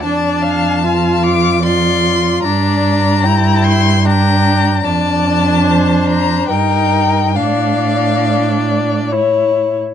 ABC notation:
X:1
M:3/4
L:1/16
Q:1/4=74
K:Dm
V:1 name="Violin"
a6 d'2 c'4 | b6 c'2 b4 | a6 b2 g4 | f8 z4 |]
V:2 name="Violin"
d2 f2 f4 d4 | d4 g4 g4 | d4 c4 B4 | d8 ^c3 z |]
V:3 name="Viola"
D4 F4 F4 | D4 E4 D4 | D8 _E4 | D8 E3 z |]
V:4 name="Cello" clef=bass
F,,12 | G,,12 | F,,8 G,,4 | A,,8- A,,3 z |]